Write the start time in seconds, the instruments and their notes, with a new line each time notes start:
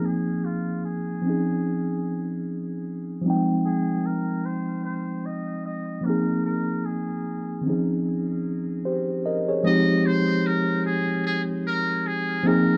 Already playing: tine electric piano F3 A#3 C4 D#4 G#4
0.05 muted trumpet G#4
0.45 muted trumpet F4
0.85 muted trumpet G#4
1.22 tine electric piano F3 C4 C#4
1.28 tine electric piano D#4 G#4
3.22 tine electric piano F3 G3
3.26 tine electric piano C4 D#4
3.30 tine electric piano G#3 G5
3.66 muted trumpet G#4
4.06 muted trumpet A#4
4.46 muted trumpet C5
4.85 muted trumpet C5
5.26 muted trumpet D#5
5.66 muted trumpet D#5
6.01 tine electric piano F3 A#3
6.05 tine electric piano C4 D#4, muted trumpet A#4
6.10 tine electric piano G#4
6.45 muted trumpet A#4
6.85 muted trumpet G#4
7.61 tine electric piano D#3 C4
7.65 tine electric piano F3 C#4 D#4
7.70 tine electric piano G#4
8.85 tine electric piano G4 C5
9.26 tine electric piano A#4 D#5
9.48 tine electric piano G#4 C#5
9.64 tine electric piano F3 G#3 C4 D#4, muted trumpet D#5
9.68 tine electric piano G4
10.06 muted trumpet C5
10.47 muted trumpet A#4
10.86 muted trumpet G#4
11.26 muted trumpet G#4
11.67 muted trumpet A#4
12.07 muted trumpet G#4
12.43 tine electric piano F3 A#3 C4 D#4, muted trumpet A#4
12.48 tine electric piano G#4